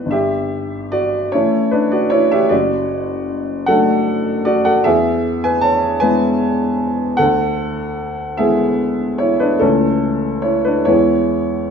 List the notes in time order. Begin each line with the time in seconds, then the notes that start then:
Already playing: E3 B3 D4 B4
0.06 G1
0.11 G4 E5
0.92 F#4 D5
1.32 E3 A3 C#4 E4 C#5
1.71 D4 B4
1.92 F#4 D5
2.10 E4 C#5
2.32 G4 E5
2.49 F#1 F#4 D5
3.66 F#3 A3 D4 A4 F#5
4.45 F#4 D5
4.65 A4 F#5
4.84 E2 G#4 E5
5.44 B4 G#5
5.61 C#5 A5
6.00 G#3 B3 E4 B4 G#5
7.17 D2 A4 F#5
8.37 G#3 B3 E4 G#4 E5
9.18 E4 C#5
9.40 D4 B4
9.59 C#2 E3 A3 C#4 A4
10.42 E4 C#5
10.65 D4 B4
10.85 E2 E3 G#3 B3 E4 C#5